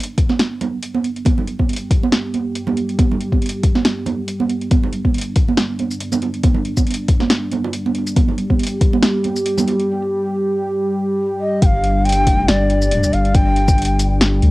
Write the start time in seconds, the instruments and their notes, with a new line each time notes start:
Already playing: analog synth pad G3 D4
0.00 closed hi-hat
0.03 closed hi-hat
0.18 kick, closed hi-hat
0.29 snare, high conga
0.39 snare, closed hi-hat
0.61 closed hi-hat, high conga, low conga
0.83 closed hi-hat
0.95 high conga
1.04 closed hi-hat
1.16 closed hi-hat
1.25 analog synth pad G4, kick, closed hi-hat, high conga
1.38 low conga
1.47 closed hi-hat
1.59 kick, high conga
1.69 closed hi-hat
1.73 closed hi-hat
1.76 closed hi-hat
1.91 kick, closed hi-hat
2.03 high conga
2.12 snare, closed hi-hat
2.34 closed hi-hat, high conga
2.56 closed hi-hat
2.67 high conga, low conga
2.77 closed hi-hat
2.89 closed hi-hat
2.99 kick, closed hi-hat, high conga
3.11 low conga
3.21 closed hi-hat
3.32 kick, high conga
3.42 closed hi-hat
3.46 closed hi-hat
3.49 closed hi-hat
3.63 kick, closed hi-hat
3.75 snare, high conga
3.85 snare, closed hi-hat
4.06 closed hi-hat, high conga, low conga
4.28 closed hi-hat
4.40 high conga
4.50 closed hi-hat
4.61 closed hi-hat
4.71 analog synth pad D4, kick, closed hi-hat, high conga
4.83 low conga
4.93 closed hi-hat
5.05 kick, high conga
5.14 closed hi-hat
5.18 closed hi-hat
5.21 closed hi-hat
5.36 kick, closed hi-hat
5.48 high conga
5.57 snare, closed hi-hat
5.79 closed hi-hat, high conga
5.91 shaker
6.00 closed hi-hat
6.12 high conga, low conga, shaker
6.22 closed hi-hat, high bongo
6.34 closed hi-hat
6.43 kick, closed hi-hat, high conga
6.54 low conga
6.65 closed hi-hat
6.77 kick, high conga, shaker
6.87 closed hi-hat
6.91 closed hi-hat
6.94 closed hi-hat
7.08 kick, closed hi-hat
7.20 snare, high conga
7.30 snare, closed hi-hat
7.52 closed hi-hat, high conga, low conga
7.64 high bongo
7.73 closed hi-hat
7.86 high conga
7.95 closed hi-hat
8.07 closed hi-hat, shaker
8.16 analog synth pad G4, kick, closed hi-hat, high conga
8.28 low conga
8.38 closed hi-hat
8.50 kick, high conga
8.60 closed hi-hat
8.64 closed hi-hat
8.67 closed hi-hat
8.81 kick, closed hi-hat
8.93 high conga
9.03 snare, closed hi-hat
9.24 closed hi-hat, high conga
9.36 shaker
9.46 closed hi-hat
9.58 high conga, low conga, shaker
9.68 closed hi-hat, high bongo
9.80 closed hi-hat
11.41 ney D#5
11.62 sub bass G1, analog synth pad G3 D4, ney G5, kick, closed hi-hat
11.66 ney F5
11.83 closed hi-hat
12.05 ney G5, closed hi-hat
12.09 closed hi-hat
12.12 closed hi-hat
12.22 sub bass F#1
12.27 kick, closed hi-hat
12.48 sub bass G1, ney D5, snare, closed hi-hat
12.70 closed hi-hat
12.82 shaker
12.91 closed hi-hat
13.03 shaker
13.13 sub bass G1, ney F5, closed hi-hat
13.25 closed hi-hat
13.35 ney G5, kick, closed hi-hat
13.56 closed hi-hat
13.68 kick, shaker
13.78 closed hi-hat
13.82 closed hi-hat
13.85 closed hi-hat
13.99 closed hi-hat, shaker
14.21 snare, closed hi-hat
14.43 sub bass D2, closed hi-hat